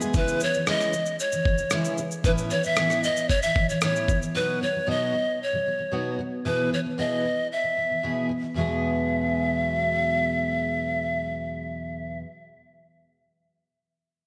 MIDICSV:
0, 0, Header, 1, 5, 480
1, 0, Start_track
1, 0, Key_signature, 4, "major"
1, 0, Tempo, 527241
1, 120, Time_signature, 4, 2, 24, 8
1, 12984, End_track
2, 0, Start_track
2, 0, Title_t, "Pan flute"
2, 0, Program_c, 0, 75
2, 150, Note_on_c, 0, 71, 82
2, 396, Note_on_c, 0, 73, 77
2, 409, Note_off_c, 0, 71, 0
2, 617, Note_off_c, 0, 73, 0
2, 624, Note_on_c, 0, 75, 87
2, 1058, Note_off_c, 0, 75, 0
2, 1093, Note_on_c, 0, 73, 76
2, 1768, Note_off_c, 0, 73, 0
2, 2051, Note_on_c, 0, 71, 82
2, 2105, Note_off_c, 0, 71, 0
2, 2284, Note_on_c, 0, 73, 75
2, 2417, Note_on_c, 0, 76, 90
2, 2431, Note_off_c, 0, 73, 0
2, 2767, Note_on_c, 0, 75, 94
2, 2781, Note_off_c, 0, 76, 0
2, 2997, Note_on_c, 0, 73, 83
2, 3011, Note_off_c, 0, 75, 0
2, 3115, Note_on_c, 0, 76, 84
2, 3129, Note_off_c, 0, 73, 0
2, 3362, Note_on_c, 0, 73, 72
2, 3376, Note_off_c, 0, 76, 0
2, 3478, Note_off_c, 0, 73, 0
2, 3483, Note_on_c, 0, 73, 84
2, 3814, Note_off_c, 0, 73, 0
2, 3965, Note_on_c, 0, 71, 81
2, 4209, Note_on_c, 0, 73, 69
2, 4223, Note_off_c, 0, 71, 0
2, 4465, Note_on_c, 0, 75, 80
2, 4479, Note_off_c, 0, 73, 0
2, 4930, Note_off_c, 0, 75, 0
2, 4942, Note_on_c, 0, 73, 68
2, 5611, Note_off_c, 0, 73, 0
2, 5878, Note_on_c, 0, 71, 74
2, 6099, Note_off_c, 0, 71, 0
2, 6133, Note_on_c, 0, 73, 59
2, 6188, Note_off_c, 0, 73, 0
2, 6368, Note_on_c, 0, 75, 73
2, 6808, Note_off_c, 0, 75, 0
2, 6848, Note_on_c, 0, 76, 82
2, 7525, Note_off_c, 0, 76, 0
2, 7796, Note_on_c, 0, 76, 76
2, 11100, Note_off_c, 0, 76, 0
2, 12984, End_track
3, 0, Start_track
3, 0, Title_t, "String section"
3, 0, Program_c, 1, 48
3, 0, Note_on_c, 1, 59, 70
3, 0, Note_on_c, 1, 64, 72
3, 0, Note_on_c, 1, 68, 89
3, 106, Note_off_c, 1, 59, 0
3, 109, Note_off_c, 1, 68, 0
3, 110, Note_off_c, 1, 64, 0
3, 12984, End_track
4, 0, Start_track
4, 0, Title_t, "Steel-string acoustic guitar"
4, 0, Program_c, 2, 25
4, 14, Note_on_c, 2, 68, 60
4, 27, Note_on_c, 2, 59, 52
4, 34, Note_on_c, 2, 56, 50
4, 127, Note_off_c, 2, 68, 0
4, 133, Note_off_c, 2, 56, 0
4, 133, Note_off_c, 2, 59, 0
4, 136, Note_on_c, 2, 49, 66
4, 142, Note_on_c, 2, 52, 68
4, 144, Note_on_c, 2, 56, 73
4, 146, Note_on_c, 2, 61, 67
4, 147, Note_on_c, 2, 64, 77
4, 362, Note_off_c, 2, 49, 0
4, 370, Note_off_c, 2, 52, 0
4, 371, Note_off_c, 2, 56, 0
4, 373, Note_off_c, 2, 61, 0
4, 373, Note_off_c, 2, 64, 0
4, 373, Note_on_c, 2, 49, 45
4, 392, Note_on_c, 2, 52, 51
4, 486, Note_off_c, 2, 49, 0
4, 495, Note_off_c, 2, 52, 0
4, 498, Note_on_c, 2, 49, 37
4, 510, Note_on_c, 2, 52, 43
4, 598, Note_off_c, 2, 49, 0
4, 603, Note_off_c, 2, 52, 0
4, 609, Note_on_c, 2, 49, 71
4, 614, Note_on_c, 2, 52, 66
4, 616, Note_on_c, 2, 56, 70
4, 619, Note_on_c, 2, 61, 67
4, 619, Note_on_c, 2, 64, 79
4, 833, Note_off_c, 2, 49, 0
4, 844, Note_on_c, 2, 49, 52
4, 846, Note_off_c, 2, 52, 0
4, 847, Note_off_c, 2, 56, 0
4, 848, Note_off_c, 2, 61, 0
4, 848, Note_off_c, 2, 64, 0
4, 860, Note_on_c, 2, 52, 53
4, 1033, Note_off_c, 2, 49, 0
4, 1041, Note_off_c, 2, 52, 0
4, 1206, Note_on_c, 2, 49, 41
4, 1222, Note_on_c, 2, 52, 51
4, 1321, Note_off_c, 2, 49, 0
4, 1329, Note_off_c, 2, 52, 0
4, 1333, Note_on_c, 2, 49, 51
4, 1347, Note_on_c, 2, 52, 55
4, 1437, Note_off_c, 2, 49, 0
4, 1448, Note_on_c, 2, 49, 45
4, 1452, Note_off_c, 2, 52, 0
4, 1461, Note_on_c, 2, 52, 47
4, 1550, Note_off_c, 2, 49, 0
4, 1556, Note_off_c, 2, 52, 0
4, 1561, Note_on_c, 2, 49, 64
4, 1567, Note_on_c, 2, 52, 59
4, 1571, Note_on_c, 2, 56, 66
4, 1573, Note_on_c, 2, 61, 65
4, 1577, Note_on_c, 2, 64, 77
4, 1796, Note_off_c, 2, 49, 0
4, 1801, Note_off_c, 2, 52, 0
4, 1804, Note_off_c, 2, 56, 0
4, 1804, Note_off_c, 2, 61, 0
4, 1807, Note_off_c, 2, 64, 0
4, 1807, Note_on_c, 2, 49, 62
4, 1825, Note_on_c, 2, 52, 74
4, 1994, Note_off_c, 2, 49, 0
4, 2003, Note_off_c, 2, 52, 0
4, 2051, Note_on_c, 2, 45, 72
4, 2058, Note_on_c, 2, 59, 67
4, 2059, Note_on_c, 2, 52, 72
4, 2063, Note_on_c, 2, 61, 74
4, 2066, Note_on_c, 2, 64, 73
4, 2284, Note_off_c, 2, 45, 0
4, 2287, Note_off_c, 2, 59, 0
4, 2288, Note_off_c, 2, 52, 0
4, 2289, Note_off_c, 2, 61, 0
4, 2291, Note_off_c, 2, 64, 0
4, 2293, Note_on_c, 2, 45, 56
4, 2311, Note_on_c, 2, 52, 58
4, 2398, Note_off_c, 2, 45, 0
4, 2408, Note_on_c, 2, 45, 43
4, 2413, Note_off_c, 2, 52, 0
4, 2432, Note_on_c, 2, 52, 43
4, 2517, Note_off_c, 2, 45, 0
4, 2523, Note_off_c, 2, 52, 0
4, 2528, Note_on_c, 2, 45, 69
4, 2534, Note_on_c, 2, 52, 70
4, 2536, Note_on_c, 2, 59, 64
4, 2540, Note_on_c, 2, 61, 67
4, 2540, Note_on_c, 2, 64, 78
4, 2762, Note_off_c, 2, 45, 0
4, 2765, Note_off_c, 2, 52, 0
4, 2766, Note_off_c, 2, 59, 0
4, 2768, Note_off_c, 2, 61, 0
4, 2768, Note_off_c, 2, 64, 0
4, 2774, Note_on_c, 2, 45, 53
4, 2792, Note_on_c, 2, 52, 58
4, 2957, Note_off_c, 2, 45, 0
4, 2966, Note_off_c, 2, 52, 0
4, 3133, Note_on_c, 2, 45, 41
4, 3147, Note_on_c, 2, 52, 47
4, 3235, Note_off_c, 2, 45, 0
4, 3245, Note_on_c, 2, 45, 47
4, 3251, Note_off_c, 2, 52, 0
4, 3261, Note_on_c, 2, 52, 53
4, 3349, Note_off_c, 2, 45, 0
4, 3360, Note_on_c, 2, 45, 46
4, 3368, Note_off_c, 2, 52, 0
4, 3379, Note_on_c, 2, 52, 44
4, 3465, Note_off_c, 2, 45, 0
4, 3473, Note_off_c, 2, 52, 0
4, 3476, Note_on_c, 2, 45, 58
4, 3484, Note_on_c, 2, 52, 57
4, 3485, Note_on_c, 2, 59, 57
4, 3490, Note_on_c, 2, 61, 66
4, 3491, Note_on_c, 2, 64, 65
4, 3710, Note_off_c, 2, 45, 0
4, 3719, Note_off_c, 2, 52, 0
4, 3720, Note_off_c, 2, 59, 0
4, 3721, Note_on_c, 2, 45, 48
4, 3722, Note_off_c, 2, 61, 0
4, 3723, Note_off_c, 2, 64, 0
4, 3743, Note_on_c, 2, 52, 62
4, 3823, Note_off_c, 2, 45, 0
4, 3834, Note_on_c, 2, 45, 39
4, 3840, Note_off_c, 2, 52, 0
4, 3851, Note_on_c, 2, 52, 43
4, 3952, Note_off_c, 2, 52, 0
4, 3953, Note_off_c, 2, 45, 0
4, 3956, Note_on_c, 2, 47, 66
4, 3956, Note_on_c, 2, 54, 73
4, 3962, Note_on_c, 2, 59, 71
4, 3964, Note_on_c, 2, 63, 65
4, 3965, Note_on_c, 2, 66, 76
4, 4185, Note_off_c, 2, 47, 0
4, 4195, Note_off_c, 2, 54, 0
4, 4196, Note_on_c, 2, 47, 55
4, 4198, Note_off_c, 2, 59, 0
4, 4199, Note_off_c, 2, 63, 0
4, 4200, Note_off_c, 2, 66, 0
4, 4213, Note_on_c, 2, 54, 51
4, 4307, Note_off_c, 2, 47, 0
4, 4318, Note_on_c, 2, 47, 37
4, 4324, Note_off_c, 2, 54, 0
4, 4337, Note_on_c, 2, 54, 44
4, 4419, Note_off_c, 2, 47, 0
4, 4422, Note_off_c, 2, 54, 0
4, 4430, Note_on_c, 2, 47, 67
4, 4433, Note_on_c, 2, 54, 76
4, 4437, Note_on_c, 2, 59, 67
4, 4438, Note_on_c, 2, 66, 67
4, 4440, Note_on_c, 2, 63, 69
4, 4656, Note_off_c, 2, 47, 0
4, 4667, Note_on_c, 2, 47, 50
4, 4674, Note_off_c, 2, 54, 0
4, 4675, Note_off_c, 2, 59, 0
4, 4676, Note_off_c, 2, 66, 0
4, 4677, Note_off_c, 2, 63, 0
4, 4686, Note_on_c, 2, 54, 59
4, 4863, Note_off_c, 2, 47, 0
4, 4872, Note_off_c, 2, 54, 0
4, 5033, Note_on_c, 2, 47, 45
4, 5051, Note_on_c, 2, 54, 44
4, 5144, Note_off_c, 2, 47, 0
4, 5155, Note_on_c, 2, 47, 45
4, 5161, Note_off_c, 2, 54, 0
4, 5171, Note_on_c, 2, 54, 51
4, 5256, Note_off_c, 2, 47, 0
4, 5267, Note_on_c, 2, 47, 41
4, 5273, Note_off_c, 2, 54, 0
4, 5284, Note_on_c, 2, 54, 45
4, 5374, Note_off_c, 2, 47, 0
4, 5382, Note_off_c, 2, 54, 0
4, 5385, Note_on_c, 2, 47, 63
4, 5393, Note_on_c, 2, 54, 63
4, 5395, Note_on_c, 2, 59, 61
4, 5397, Note_on_c, 2, 63, 64
4, 5400, Note_on_c, 2, 66, 64
4, 5622, Note_off_c, 2, 47, 0
4, 5633, Note_off_c, 2, 54, 0
4, 5633, Note_on_c, 2, 47, 50
4, 5634, Note_off_c, 2, 59, 0
4, 5636, Note_off_c, 2, 63, 0
4, 5637, Note_off_c, 2, 66, 0
4, 5649, Note_on_c, 2, 54, 57
4, 5826, Note_off_c, 2, 47, 0
4, 5834, Note_off_c, 2, 54, 0
4, 5873, Note_on_c, 2, 47, 59
4, 5873, Note_on_c, 2, 52, 68
4, 5880, Note_on_c, 2, 59, 67
4, 5882, Note_on_c, 2, 64, 70
4, 5884, Note_on_c, 2, 68, 68
4, 6093, Note_off_c, 2, 47, 0
4, 6104, Note_on_c, 2, 47, 44
4, 6113, Note_off_c, 2, 52, 0
4, 6117, Note_off_c, 2, 59, 0
4, 6118, Note_off_c, 2, 64, 0
4, 6119, Note_off_c, 2, 68, 0
4, 6124, Note_on_c, 2, 52, 58
4, 6219, Note_off_c, 2, 47, 0
4, 6230, Note_on_c, 2, 47, 37
4, 6236, Note_off_c, 2, 52, 0
4, 6247, Note_on_c, 2, 52, 41
4, 6341, Note_off_c, 2, 52, 0
4, 6343, Note_off_c, 2, 47, 0
4, 6352, Note_on_c, 2, 52, 60
4, 6354, Note_on_c, 2, 47, 63
4, 6359, Note_on_c, 2, 64, 67
4, 6360, Note_on_c, 2, 59, 61
4, 6363, Note_on_c, 2, 68, 57
4, 6579, Note_off_c, 2, 47, 0
4, 6589, Note_on_c, 2, 47, 47
4, 6593, Note_off_c, 2, 52, 0
4, 6596, Note_off_c, 2, 64, 0
4, 6597, Note_off_c, 2, 59, 0
4, 6598, Note_off_c, 2, 68, 0
4, 6605, Note_on_c, 2, 52, 52
4, 6784, Note_off_c, 2, 47, 0
4, 6791, Note_off_c, 2, 52, 0
4, 6950, Note_on_c, 2, 47, 39
4, 6966, Note_on_c, 2, 52, 38
4, 7060, Note_off_c, 2, 47, 0
4, 7071, Note_on_c, 2, 47, 43
4, 7080, Note_off_c, 2, 52, 0
4, 7090, Note_on_c, 2, 52, 45
4, 7182, Note_off_c, 2, 47, 0
4, 7193, Note_on_c, 2, 47, 38
4, 7199, Note_off_c, 2, 52, 0
4, 7210, Note_on_c, 2, 52, 44
4, 7302, Note_off_c, 2, 47, 0
4, 7306, Note_off_c, 2, 52, 0
4, 7313, Note_on_c, 2, 47, 54
4, 7317, Note_on_c, 2, 52, 58
4, 7321, Note_on_c, 2, 59, 54
4, 7323, Note_on_c, 2, 64, 57
4, 7326, Note_on_c, 2, 68, 65
4, 7537, Note_off_c, 2, 47, 0
4, 7548, Note_on_c, 2, 47, 55
4, 7555, Note_off_c, 2, 52, 0
4, 7557, Note_off_c, 2, 59, 0
4, 7559, Note_off_c, 2, 64, 0
4, 7560, Note_off_c, 2, 68, 0
4, 7568, Note_on_c, 2, 52, 53
4, 7656, Note_off_c, 2, 47, 0
4, 7666, Note_on_c, 2, 47, 44
4, 7672, Note_off_c, 2, 52, 0
4, 7683, Note_on_c, 2, 52, 43
4, 7778, Note_on_c, 2, 40, 64
4, 7783, Note_off_c, 2, 47, 0
4, 7794, Note_on_c, 2, 47, 66
4, 7798, Note_off_c, 2, 52, 0
4, 7806, Note_on_c, 2, 54, 61
4, 7811, Note_on_c, 2, 56, 72
4, 7824, Note_on_c, 2, 59, 65
4, 7833, Note_on_c, 2, 68, 64
4, 11118, Note_off_c, 2, 40, 0
4, 11134, Note_off_c, 2, 47, 0
4, 11146, Note_off_c, 2, 54, 0
4, 11151, Note_off_c, 2, 56, 0
4, 11165, Note_off_c, 2, 59, 0
4, 11174, Note_off_c, 2, 68, 0
4, 12984, End_track
5, 0, Start_track
5, 0, Title_t, "Drums"
5, 11, Note_on_c, 9, 82, 44
5, 102, Note_off_c, 9, 82, 0
5, 126, Note_on_c, 9, 82, 59
5, 129, Note_on_c, 9, 36, 108
5, 217, Note_off_c, 9, 82, 0
5, 220, Note_off_c, 9, 36, 0
5, 254, Note_on_c, 9, 82, 46
5, 345, Note_off_c, 9, 82, 0
5, 368, Note_on_c, 9, 82, 52
5, 459, Note_off_c, 9, 82, 0
5, 491, Note_on_c, 9, 82, 40
5, 582, Note_off_c, 9, 82, 0
5, 608, Note_on_c, 9, 82, 52
5, 611, Note_on_c, 9, 37, 88
5, 699, Note_off_c, 9, 82, 0
5, 702, Note_off_c, 9, 37, 0
5, 733, Note_on_c, 9, 37, 28
5, 735, Note_on_c, 9, 82, 40
5, 824, Note_off_c, 9, 37, 0
5, 826, Note_off_c, 9, 82, 0
5, 849, Note_on_c, 9, 82, 45
5, 940, Note_off_c, 9, 82, 0
5, 964, Note_on_c, 9, 82, 40
5, 1055, Note_off_c, 9, 82, 0
5, 1089, Note_on_c, 9, 82, 53
5, 1180, Note_off_c, 9, 82, 0
5, 1204, Note_on_c, 9, 82, 44
5, 1295, Note_off_c, 9, 82, 0
5, 1324, Note_on_c, 9, 36, 75
5, 1415, Note_off_c, 9, 36, 0
5, 1439, Note_on_c, 9, 82, 43
5, 1530, Note_off_c, 9, 82, 0
5, 1552, Note_on_c, 9, 82, 74
5, 1556, Note_on_c, 9, 37, 86
5, 1643, Note_off_c, 9, 82, 0
5, 1647, Note_off_c, 9, 37, 0
5, 1682, Note_on_c, 9, 82, 41
5, 1773, Note_off_c, 9, 82, 0
5, 1799, Note_on_c, 9, 82, 43
5, 1891, Note_off_c, 9, 82, 0
5, 1924, Note_on_c, 9, 82, 37
5, 2015, Note_off_c, 9, 82, 0
5, 2042, Note_on_c, 9, 36, 98
5, 2044, Note_on_c, 9, 82, 57
5, 2133, Note_off_c, 9, 36, 0
5, 2135, Note_off_c, 9, 82, 0
5, 2166, Note_on_c, 9, 82, 44
5, 2257, Note_off_c, 9, 82, 0
5, 2281, Note_on_c, 9, 82, 46
5, 2372, Note_off_c, 9, 82, 0
5, 2401, Note_on_c, 9, 82, 40
5, 2492, Note_off_c, 9, 82, 0
5, 2515, Note_on_c, 9, 82, 56
5, 2519, Note_on_c, 9, 37, 80
5, 2606, Note_off_c, 9, 82, 0
5, 2610, Note_off_c, 9, 37, 0
5, 2642, Note_on_c, 9, 37, 33
5, 2644, Note_on_c, 9, 82, 40
5, 2733, Note_off_c, 9, 37, 0
5, 2735, Note_off_c, 9, 82, 0
5, 2764, Note_on_c, 9, 82, 43
5, 2855, Note_off_c, 9, 82, 0
5, 2885, Note_on_c, 9, 82, 42
5, 2976, Note_off_c, 9, 82, 0
5, 3000, Note_on_c, 9, 36, 64
5, 3006, Note_on_c, 9, 82, 49
5, 3091, Note_off_c, 9, 36, 0
5, 3097, Note_off_c, 9, 82, 0
5, 3119, Note_on_c, 9, 82, 41
5, 3210, Note_off_c, 9, 82, 0
5, 3239, Note_on_c, 9, 36, 74
5, 3330, Note_off_c, 9, 36, 0
5, 3364, Note_on_c, 9, 82, 42
5, 3455, Note_off_c, 9, 82, 0
5, 3472, Note_on_c, 9, 82, 69
5, 3476, Note_on_c, 9, 37, 91
5, 3563, Note_off_c, 9, 82, 0
5, 3567, Note_off_c, 9, 37, 0
5, 3604, Note_on_c, 9, 82, 42
5, 3695, Note_off_c, 9, 82, 0
5, 3718, Note_on_c, 9, 36, 75
5, 3721, Note_on_c, 9, 82, 44
5, 3809, Note_off_c, 9, 36, 0
5, 3812, Note_off_c, 9, 82, 0
5, 3846, Note_on_c, 9, 82, 41
5, 3937, Note_off_c, 9, 82, 0
5, 12984, End_track
0, 0, End_of_file